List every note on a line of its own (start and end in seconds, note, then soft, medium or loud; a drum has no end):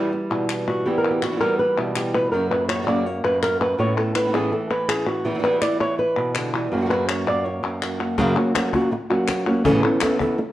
0.00 0.11 E2 medium
0.00 0.11 B2 medium
0.00 0.11 E3 medium
0.00 0.84 E3 medium
0.00 0.12 G3 medium
0.00 0.84 G3 medium
0.00 0.11 B3 medium
0.00 0.12 E4 medium
0.00 0.86 E4 soft
0.00 0.67 B4 medium
0.12 muted nylon-string guitar stroke medium
0.30 0.84 B2 medium
0.30 0.48 E3 soft
0.30 0.49 G3 soft
0.30 0.49 B3 soft
0.30 0.48 E4 soft
0.30 clap soft
0.49 0.85 E3 soft
0.49 0.85 G3 soft
0.49 0.86 B3 soft
0.49 0.86 E4 medium
0.49 clap medium
0.68 0.86 F#4 loud
0.68 clap soft
0.85 1.22 E2 medium
0.85 1.22 B2 medium
0.85 2.30 E3 medium
0.85 1.22 E3 medium
0.85 1.22 G3 medium
0.85 1.22 B3 medium
0.85 1.21 E4 medium
0.85 0.98 G4 loud
0.98 1.10 A#4 medium
1.04 clap medium
1.10 1.23 G4 medium
1.22 1.26 E3 soft
1.22 1.27 G3 soft
1.22 1.27 B3 soft
1.22 1.27 E4 soft
1.22 1.40 F#4 medium
1.22 clap medium
1.27 1.31 B2 soft
1.27 1.31 E3 soft
1.27 1.31 G3 soft
1.27 1.31 B3 soft
1.27 1.32 E4 soft
1.32 1.35 B2 soft
1.32 1.36 E3 soft
1.32 1.36 G3 medium
1.32 1.36 B3 medium
1.32 1.36 E4 medium
1.36 1.40 B2 medium
1.36 1.40 E3 medium
1.36 1.40 G3 medium
1.36 2.30 G3 medium
1.36 1.40 B3 medium
1.36 1.41 E4 medium
1.40 1.58 E2 medium
1.40 1.58 B2 medium
1.40 1.58 E3 medium
1.40 1.58 G3 medium
1.40 1.58 B3 medium
1.40 1.59 E4 medium
1.40 1.59 A#4 loud
1.59 1.78 B4 loud
1.59 muted nylon-string guitar stroke medium
1.77 2.30 B2 medium
1.77 1.95 E3 soft
1.77 1.95 G3 soft
1.77 1.95 B3 soft
1.77 1.95 E4 soft
1.77 1.96 E4 medium
1.77 clap medium
1.96 2.32 E3 soft
1.96 2.32 G3 soft
1.96 2.32 B3 soft
1.96 2.33 E4 soft
1.96 2.14 G4 medium
1.96 clap loud
2.14 2.31 B4 loud
2.32 3.23 F#2 medium
2.32 2.50 F#2 medium
2.32 2.51 C#3 medium
2.32 2.51 F#3 medium
2.32 2.51 A#3 medium
2.32 2.50 C#4 medium
2.32 2.49 F#4 medium
2.32 2.50 A#4 medium
2.51 2.69 F#3 soft
2.51 2.69 A#3 soft
2.51 2.69 C#4 soft
2.51 2.68 F#4 soft
2.51 2.68 B4 medium
2.51 clap medium
2.68 2.73 F#3 soft
2.68 2.73 A#3 soft
2.68 2.74 C#4 soft
2.68 2.74 F#4 soft
2.68 2.86 C#5 loud
2.68 clap medium
2.74 2.77 C#3 soft
2.74 2.77 F#3 soft
2.74 2.78 A#3 soft
2.74 2.78 C#4 soft
2.74 2.78 F#4 medium
2.78 2.82 C#3 soft
2.78 2.82 F#3 medium
2.78 2.82 A#3 soft
2.78 2.83 C#4 medium
2.78 2.83 F#4 medium
2.83 2.86 C#3 medium
2.83 2.87 F#3 medium
2.83 2.87 A#3 medium
2.83 2.87 C#4 medium
2.83 2.87 F#4 medium
2.83 3.06 D5 medium
2.87 3.05 F#2 medium
2.87 3.05 C#3 medium
2.87 3.05 F#3 medium
2.87 3.77 A#3 medium
2.87 3.06 A#3 medium
2.87 3.05 C#4 medium
2.87 3.06 F#4 medium
3.06 3.24 C#5 medium
3.06 muted nylon-string guitar stroke medium
3.24 3.78 F#2 medium
3.24 3.42 B4 loud
3.24 clap medium
3.42 3.78 F#3 soft
3.42 3.79 A#3 soft
3.42 3.79 C#4 soft
3.42 3.79 F#4 medium
3.42 3.61 A#4 medium
3.42 clap medium
3.61 3.79 B4 loud
3.61 clap medium
3.78 5.23 A2 medium
3.78 3.96 A2 medium
3.78 3.97 E3 medium
3.78 3.97 B3 medium
3.78 3.97 C#4 medium
3.78 3.95 E4 medium
3.78 3.97 C#5 loud
3.97 4.16 B3 soft
3.97 4.15 C#4 soft
3.97 4.14 E4 soft
3.97 4.15 A4 medium
3.97 clap medium
4.15 4.23 B3 soft
4.15 4.24 C#4 soft
4.15 4.24 E4 soft
4.15 4.34 B4 loud
4.15 clap medium
4.24 4.27 E3 soft
4.24 4.28 B3 medium
4.24 4.28 C#4 medium
4.24 4.29 E4 soft
4.29 4.32 E3 medium
4.29 4.33 B3 medium
4.29 4.33 C#4 medium
4.29 4.33 E4 medium
4.33 4.51 A2 medium
4.33 4.69 E3 medium
4.33 4.51 E3 medium
4.33 4.52 B3 medium
4.33 4.51 C#4 medium
4.33 4.52 E4 medium
4.33 4.52 G#4 medium
4.33 clap medium
4.52 4.70 A4 medium
4.52 muted nylon-string guitar stroke soft
4.70 5.23 E3 medium
4.70 4.89 B4 loud
4.70 clap medium
4.88 5.24 E3 soft
4.88 5.25 B3 soft
4.88 5.25 C#4 medium
4.88 5.25 E4 soft
4.88 5.07 G#4 medium
4.88 clap loud
5.07 5.25 F#4 medium
5.25 5.42 E2 medium
5.25 5.29 B2 medium
5.25 6.52 E3 medium
5.25 5.29 E3 medium
5.25 5.29 G3 medium
5.25 5.30 B3 medium
5.25 5.79 E4 medium
5.25 5.30 E4 medium
5.25 5.44 G4 medium
5.30 5.33 B2 soft
5.30 5.34 E3 medium
5.30 5.34 G3 soft
5.30 5.34 B3 soft
5.30 5.34 E4 soft
5.34 5.38 B2 medium
5.34 5.38 E3 medium
5.34 5.38 G3 medium
5.34 5.38 B3 medium
5.34 5.39 E4 medium
5.39 5.42 B2 medium
5.39 5.43 E3 medium
5.39 5.43 G3 medium
5.39 5.43 B3 medium
5.39 5.43 E4 medium
5.43 5.61 E2 medium
5.43 5.61 B2 medium
5.43 5.61 E3 medium
5.43 5.62 G3 medium
5.43 5.61 B3 medium
5.43 5.60 E4 medium
5.43 5.61 B4 loud
5.43 clap medium
5.61 5.97 E3 soft
5.61 5.98 G3 soft
5.61 5.98 B3 medium
5.61 5.98 E4 soft
5.61 5.80 D5 loud
5.61 clap medium
5.80 6.70 E4 medium
5.80 5.98 C#5 loud
5.98 6.35 B4 medium
5.98 muted nylon-string guitar stroke medium
6.16 6.70 B2 medium
6.16 clap medium
6.35 6.54 D3 medium
6.35 6.53 E3 soft
6.35 6.53 G3 medium
6.35 6.53 B3 medium
6.35 6.52 E4 medium
6.35 clap loud
6.53 6.72 E3 medium
6.53 6.72 E3 soft
6.53 6.72 G3 soft
6.53 6.71 B3 medium
6.53 6.71 E4 soft
6.71 7.62 F#2 medium
6.71 6.88 F#2 medium
6.71 6.75 C#3 medium
6.71 6.76 F#3 medium
6.71 7.25 A#3 medium
6.71 6.76 A#3 medium
6.71 6.76 C#4 medium
6.71 8.17 F#4 medium
6.71 6.76 F#4 medium
6.76 6.79 C#3 soft
6.76 6.80 F#3 soft
6.76 6.80 A#3 soft
6.76 6.80 C#4 soft
6.76 6.81 F#4 medium
6.81 6.84 C#3 medium
6.81 6.84 F#3 medium
6.81 6.85 A#3 soft
6.81 6.85 C#4 medium
6.81 6.85 F#4 medium
6.85 6.89 C#3 medium
6.85 6.89 F#3 medium
6.85 6.89 A#3 medium
6.85 6.90 C#4 medium
6.85 6.90 F#4 medium
6.90 7.08 F#2 medium
6.90 7.08 C#3 medium
6.90 7.08 F#3 medium
6.90 7.08 A#3 medium
6.90 7.08 C#4 medium
6.90 7.07 F#4 medium
6.90 7.08 B4 loud
6.90 clap medium
7.08 7.44 F#3 soft
7.08 7.44 A#3 soft
7.08 7.45 C#4 soft
7.08 7.44 F#4 soft
7.08 7.27 C#5 loud
7.08 clap loud
7.26 8.16 A#3 medium
7.26 7.45 D5 loud
7.26 clap medium
7.45 7.82 C#5 medium
7.45 muted nylon-string guitar stroke medium
7.63 8.17 F#2 medium
7.63 clap medium
7.81 7.99 F#3 soft
7.81 8.00 A#3 medium
7.81 7.99 C#4 soft
7.81 7.98 F#4 medium
7.81 clap medium
7.99 8.18 F#3 soft
7.99 8.18 A#3 soft
7.99 8.18 C#4 soft
7.99 8.17 F#4 medium
7.99 clap medium
8.18 8.36 F#2 medium
8.18 8.36 F#2 loud
8.18 8.36 C#3 medium
8.18 8.36 C#3 loud
8.18 8.36 F#3 loud
8.18 8.36 F#3 medium
8.18 8.36 A#3 loud
8.18 8.36 A#3 medium
8.18 8.36 C#4 loud
8.18 8.35 C#4 medium
8.18 8.36 F#4 loud
8.18 8.35 F#4 medium
8.18 cajon bass loud
8.18 cajon slap soft
8.36 8.53 F#3 soft
8.36 8.55 F#3 soft
8.36 8.54 A#3 soft
8.36 8.54 C#4 soft
8.36 8.54 C#4 medium
8.36 8.54 F#4 soft
8.36 8.53 F#4 medium
8.54 8.72 F#3 soft
8.54 8.73 A#3 medium
8.54 8.73 C#4 medium
8.54 8.73 C#4 soft
8.54 8.72 F#4 medium
8.54 cajon slap loud
8.54 clap medium
8.73 8.91 F#3 medium
8.73 8.91 F#3 soft
8.73 8.91 A#3 medium
8.73 8.91 A#3 soft
8.73 8.91 C#4 soft
8.73 8.92 C#4 medium
8.73 8.91 F#4 soft
8.73 8.92 F#4 medium
8.73 cajon bass medium
8.91 muted nylon-string guitar stroke medium
9.10 9.47 F#3 medium
9.10 9.65 F#3 soft
9.10 9.46 A#3 medium
9.10 9.65 A#3 soft
9.10 9.65 C#4 soft
9.10 9.46 C#4 medium
9.10 9.64 F#4 soft
9.10 9.46 F#4 medium
9.10 clap medium
9.28 cajon slap medium
9.28 clap loud
9.47 9.65 F#3 medium
9.47 9.65 A#3 medium
9.47 9.65 C#4 medium
9.47 9.64 F#4 medium
9.64 9.82 A2 medium
9.64 9.83 A2 medium
9.64 9.83 C#3 loud
9.64 9.83 E3 loud
9.64 9.83 E3 medium
9.64 9.83 B3 loud
9.64 9.83 B3 medium
9.64 9.83 C#4 loud
9.64 9.83 C#4 medium
9.64 9.81 E4 medium
9.64 9.82 A4 loud
9.64 cajon bass loud
9.83 10.01 E3 soft
9.83 10.01 B3 medium
9.83 10.01 B3 soft
9.83 10.01 C#4 medium
9.83 10.01 C#4 soft
9.83 10.01 E4 soft
9.83 10.00 A4 medium
10.01 10.19 E3 soft
10.01 10.19 E3 medium
10.01 10.19 B3 medium
10.01 10.19 B3 soft
10.01 10.19 C#4 medium
10.01 10.18 E4 soft
10.01 10.19 A4 medium
10.01 cajon slap loud
10.01 clap medium
10.19 10.37 E3 medium
10.19 10.38 B3 medium
10.19 10.37 B3 soft
10.19 10.37 C#4 soft
10.19 10.38 C#4 medium
10.19 10.37 E4 soft
10.19 10.38 A4 medium
10.19 cajon bass medium
10.38 muted nylon-string guitar stroke medium